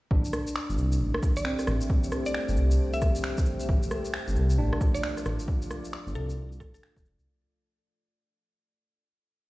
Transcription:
0.11 detuned saw bass A1, ambient pad A3, tine electric piano D4, kick
0.25 ambient pad G4 E5, shaker
0.33 cross-stick, cabasa
0.47 shaker
0.56 finger snap
0.70 detuned saw bass G1, ambient pad C5, shaker
0.78 detuned saw bass C2, cabasa
0.92 shaker
1.00 detuned saw bass A1
1.14 cross-stick
1.23 kick, cabasa
1.37 synth pluck D5, shaker
1.45 tine electric piano C4, finger snap
1.59 cross-stick, shaker
1.67 detuned saw bass A1, cross-stick, cabasa
1.81 shaker
1.90 kick
2.04 shaker
2.12 cross-stick, cabasa
2.26 synth pluck D5, shaker
2.34 synth pluck D5, finger snap
2.48 detuned saw bass G1, shaker
2.57 detuned saw bass C2, cabasa
2.71 shaker
2.93 synth pluck E5, shaker
3.02 kick, cross-stick, cabasa
3.15 shaker
3.24 finger snap
3.38 kick, shaker
3.46 cabasa
3.60 shaker
3.69 detuned saw bass A1, kick
3.83 ambient pad F4, shaker
3.91 cross-stick, cabasa
4.05 ambient pad D5, shaker
4.14 finger snap
4.28 detuned saw bass G1, shaker
4.36 detuned saw bass C2, ambient pad F5, cabasa
4.50 shaker
4.58 detuned saw bass A1, tine electric piano D4
4.73 cross-stick
4.81 kick, cabasa
4.94 synth pluck D5, shaker
5.03 finger snap
5.17 cross-stick, shaker
5.26 detuned saw bass A1, cross-stick, cabasa
5.40 shaker
5.48 kick
5.62 shaker
5.71 cross-stick, cabasa
5.85 shaker
5.93 finger snap
6.07 detuned saw bass G1, shaker
6.15 detuned saw bass C2, synth pluck A4, cabasa
6.30 shaker
6.52 shaker
6.60 detuned saw bass A1, synth pluck A4, kick, cross-stick, cabasa
6.74 synth pluck A4, shaker
6.83 finger snap
6.96 detuned saw bass E1, kick, shaker
7.06 cabasa
7.19 detuned saw bass C2, shaker

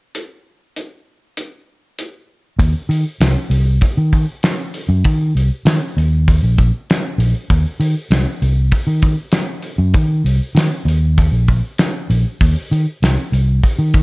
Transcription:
0.15 closed hi-hat
0.76 closed hi-hat
1.37 closed hi-hat
1.99 closed hi-hat
2.59 fingered electric bass D#2, kick, open hi-hat
2.89 fingered electric bass D#3, open hi-hat
3.20 fingered electric bass C2, snare, open hi-hat
3.50 fingered electric bass C2, open hi-hat
3.81 kick, open hi-hat
3.97 fingered electric bass D#3
4.13 kick, open hi-hat
4.43 snare, open hi-hat
4.74 open hi-hat
4.89 fingered electric bass F#2
5.04 fingered electric bass D#3, kick, open hi-hat
5.35 fingered electric bass C2, open hi-hat
5.65 fingered electric bass D#3, snare, open hi-hat
5.97 fingered electric bass D#2, open hi-hat
6.28 kick, open hi-hat
6.43 fingered electric bass A#1
6.58 kick, open hi-hat
6.90 snare, open hi-hat
7.18 fingered electric bass A#1, open hi-hat
7.50 fingered electric bass D#2, kick, open hi-hat
7.80 fingered electric bass D#3, open hi-hat
8.11 fingered electric bass C2, snare, open hi-hat
8.42 fingered electric bass C2, open hi-hat
8.72 kick, open hi-hat
8.87 fingered electric bass D#3
9.02 kick, open hi-hat
9.32 snare, open hi-hat
9.62 open hi-hat
9.78 fingered electric bass F#2
9.94 fingered electric bass D#3, kick, open hi-hat
10.24 fingered electric bass C2, open hi-hat
10.55 fingered electric bass D#3, snare, open hi-hat
10.85 fingered electric bass D#2, open hi-hat
11.18 kick, open hi-hat
11.31 fingered electric bass A#1
11.48 kick, open hi-hat
11.78 snare, open hi-hat
12.10 fingered electric bass A#1, open hi-hat
12.41 fingered electric bass D#2, kick, open hi-hat
12.71 fingered electric bass D#3, open hi-hat
13.02 fingered electric bass C2, snare, open hi-hat
13.32 fingered electric bass C2, open hi-hat
13.63 kick, open hi-hat
13.79 fingered electric bass D#3
13.94 kick, open hi-hat

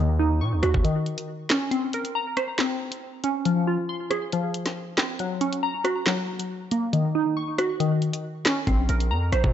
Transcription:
Already playing: 808-style bass D#2, synth pluck D#3
0.19 synth pluck D#4
0.41 808-style bass A#2, synth pluck C#6
0.53 808-style bass D#2
0.63 808-style bass D#2, synth pluck F#4, cross-stick, closed hi-hat
0.74 808-style bass D#2, kick
0.84 synth pluck D#3, closed hi-hat
1.06 closed hi-hat
1.18 closed hi-hat
1.50 synth pluck C#4, snare, clap, closed hi-hat
1.71 synth pluck C4, closed hi-hat
1.93 synth pluck A#4, closed hi-hat
2.05 closed hi-hat
2.15 synth pluck A#5
2.37 synth pluck C5, cross-stick, closed hi-hat
2.58 synth pluck C4, snare, clap
2.92 closed hi-hat
3.24 synth pluck C#4, closed hi-hat
3.45 synth pluck F3, closed hi-hat
3.67 synth pluck F4
3.89 synth pluck C6
4.10 synth pluck G#4, cross-stick, closed hi-hat
4.32 synth pluck F3, closed hi-hat
4.54 closed hi-hat
4.66 snare, closed hi-hat
4.97 synth pluck C4, snare, clap, closed hi-hat
5.19 synth pluck F#3, closed hi-hat
5.41 synth pluck C#4, closed hi-hat
5.53 closed hi-hat
5.63 synth pluck A#5
5.84 synth pluck F#4, cross-stick, closed hi-hat
6.06 synth pluck F#3, snare, clap
6.39 closed hi-hat
6.71 synth pluck A#3, closed hi-hat
6.93 synth pluck D#3, closed hi-hat
7.15 synth pluck D#4
7.37 synth pluck C#6
7.58 synth pluck F#4, cross-stick, closed hi-hat
7.80 synth pluck D#3, closed hi-hat
8.02 closed hi-hat
8.13 closed hi-hat
8.45 synth pluck C#4, snare, clap, closed hi-hat
8.67 808-style bass A#1, synth pluck C4, kick, closed hi-hat
8.89 808-style bass A#1, synth pluck A#4, closed hi-hat
9.00 closed hi-hat
9.11 808-style bass F2, synth pluck A#5
9.32 808-style bass A#1, synth pluck C5, cross-stick, closed hi-hat
9.44 808-style bass A#2, kick

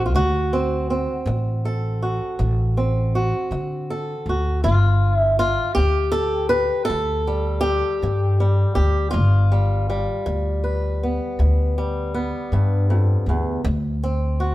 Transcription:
Already playing: upright bass A1, steel-string acoustic guitar C4 G4
0.06 steel-string acoustic guitar F4
0.13 upright bass D2, steel-string acoustic guitar D2 F#4
0.53 steel-string acoustic guitar C4
0.90 steel-string acoustic guitar C4
1.26 upright bass A1, steel-string acoustic guitar D2
1.65 steel-string acoustic guitar A4
2.02 steel-string acoustic guitar F#4
2.39 upright bass A1, steel-string acoustic guitar D2
2.77 steel-string acoustic guitar C4
3.15 steel-string acoustic guitar F#4
3.51 steel-string acoustic guitar D2, upright bass D3
3.90 steel-string acoustic guitar A4
4.26 upright bass D2, steel-string acoustic guitar F#4
4.64 upright bass G1, steel-string acoustic guitar G2 F4
5.16 steel-string acoustic guitar E4
5.39 steel-string acoustic guitar F4
5.75 upright bass D2, steel-string acoustic guitar G4
5.79 steel-string acoustic guitar G2
6.12 steel-string acoustic guitar A4
6.49 steel-string acoustic guitar B4
6.85 steel-string acoustic guitar A4
6.89 upright bass D2, steel-string acoustic guitar G2
7.27 steel-string acoustic guitar G3
7.61 steel-string acoustic guitar G4
8.02 upright bass G2, steel-string acoustic guitar G2
8.40 steel-string acoustic guitar G3
8.75 upright bass D2, steel-string acoustic guitar G4
9.11 upright bass G1, steel-string acoustic guitar G2 F4
9.52 steel-string acoustic guitar G3
9.90 steel-string acoustic guitar G3
10.26 upright bass D2, steel-string acoustic guitar G2
10.64 steel-string acoustic guitar B4
11.03 steel-string acoustic guitar B3
11.39 upright bass D2, steel-string acoustic guitar G2
11.78 steel-string acoustic guitar G3
12.14 steel-string acoustic guitar B3
12.52 upright bass G2, steel-string acoustic guitar G2
12.90 steel-string acoustic guitar F2
13.26 upright bass D2, steel-string acoustic guitar E2
13.64 upright bass D2, steel-string acoustic guitar D2
14.03 steel-string acoustic guitar C4
14.40 steel-string acoustic guitar F#4

